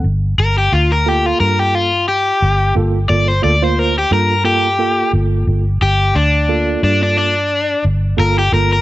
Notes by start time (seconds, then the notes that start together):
0.04 G1
0.38 G1 A#4
0.58 G4
0.72 D2 F4
0.92 A#4
1.06 A#3 F4 G4 A4
1.26 F4
1.40 G2 A#4
1.59 G4
1.75 F4
2.08 G4
2.42 G1
2.75 G1 A#3 F4 A4
3.09 G1 A#3 F4 A4 D5
3.28 C5
3.42 D2 A#3 F4 A4 D5
3.62 A#3 F4 C5
3.79 A#4
3.98 G4
4.11 G2 A#3 F4 A4 A#4
4.44 A#3 F4 G4 A4
4.79 A#3 F4 A4
5.13 G1
5.47 G1
5.81 G1 G4
6.15 D2 D4
6.49 A#3 F4 A4
6.83 G2 D4
7.03 D4
7.18 D4
7.85 G1
8.17 G1 A#3 F4 A4 A#4
8.39 G4
8.52 G1 A#3 F4 A4 A#4
8.73 A#4